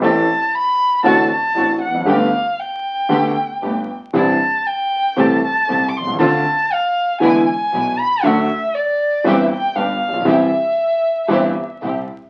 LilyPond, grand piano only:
\new Staff \with { instrumentName = "Grand piano" } { \clef bass \time 4/4 \key c \major \tempo 4 = 117 <a,, a, e a c' g'>8 r4. <a,, a, d a c' fis'>8 r8 <a,, a,>8 r32 e,32 f,32 fis,32 | <g,, g, d a b g'>8 r4. <d, d a b g'>8 r8 <g,, g,>8 r8 | <c, c e c' d' g'>8 r4. <c, c e a c' g'>8 r8 <c, c>8 r32 b,,32 c,32 des,32 | <d, d a c' f'>8 r4. <e, d e gis b e'>8 r8 <b,, b,>8 r8 |
<d, d fis a fis'>8 r4. <g,, g, e g c' g'>8 r8 <g,, g,>8 r32 a,,32 bes,,32 b,,32 | <c, c e g c' g'>8 r4. <g,, g, e g c' g'>8 r8 <c, c>8 r8 | }